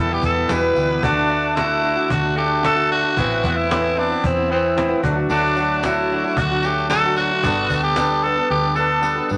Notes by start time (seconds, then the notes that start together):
Already playing: E2 B2 E3 G3 B3 E4
0.00 A4
0.09 E3 G3 B3 E4
0.13 G4
0.21 E2, cajon bass, tambourine
0.25 A4
0.35 E3 G3 B3 E4, tambourine
0.49 E2 B2 E3 G3 B3 E4 B4, cajon slap, tambourine
0.75 D2 E3 G3 B3 E4, cajon slap, tambourine
0.90 E3 G3 B3 E4
1.02 D2 D3 A3 D4 F#4, cajon bass
1.29 D3 A3 D4 F#4, cajon slap
1.55 D3 A3 D4 E4 F#4, cajon slap
1.82 D3 A3 D4 F#4, cajon slap
1.96 A3 D4 F#4
2.10 D2 F#4, cajon bass
2.22 A3 D4 F#4
2.35 D3 A3 D4 F#4 G4
2.63 D3 A3 D4 F#4 A4, cajon slap
2.75 D3 A3 D4 F#4
2.89 D3 A3 D4 F#4, cajon slap
3.02 A3 D4 F#4
3.17 A1 A2 E3 B3 C4 E4, cajon bass
3.43 E2 E3 B3 C4 E4, cajon bass
3.56 E4
3.70 A2 E3 B3 C4 E4, cajon slap
3.95 E3 B3 C4 D4 E4, cajon slap
4.09 B3 C4 E4
4.24 E2 C4, cajon bass
4.36 B3 C4 E4
4.48 E3 B3 C4 E4
4.52 C4
4.76 A2 E3 B3 C4 E4, cajon slap
4.88 A2 E3 B3 C4 E4
5.02 D2 D3 F#3 A3 D4 F#4, cajon bass
5.16 A3 D4 F#4
5.30 D2 D3 F#3 A3 D4 F#4, tambourine
5.56 F#3 A3 D4 F#4, tambourine
5.82 D3 F#3 A3 D4 E4 F#4, cajon slap, tambourine
6.10 F#3 A3 D4 F#4, cajon slap
6.24 A3 D4 F#4
6.37 D2 F#4, cajon bass
6.51 A3 D4 F#4
6.63 F#3 A3 D4 F#4 G4, tambourine
6.89 D3 F#3 A3 D4 F#4 A4, cajon slap, tambourine
7.04 D3 F#3 A3 D4 F#4
7.16 F#3 A3 D4 F#4, cajon slap, tambourine
7.20 F#4
7.30 A3 D4 F#4
7.43 G1 G3 B3 D4 A4, cajon bass, tambourine
7.70 D2 G3 B3 D4 A4, cajon bass, tambourine
7.83 G4
7.96 G3 B3 D4 A4, cajon slap, tambourine
8.23 G3 B3 D4 A4, cajon slap
8.37 B3 D4 A4
8.49 D2 G4, cajon slap
8.63 B3 D4 A4
8.76 G3 B3 D4 A4, cajon slap, tambourine
9.02 G3 B3 D4 A4, cajon slap, tambourine
9.16 G3 B3 D4 A4
9.29 G1 G3 B3 D4 A4, cajon slap, tambourine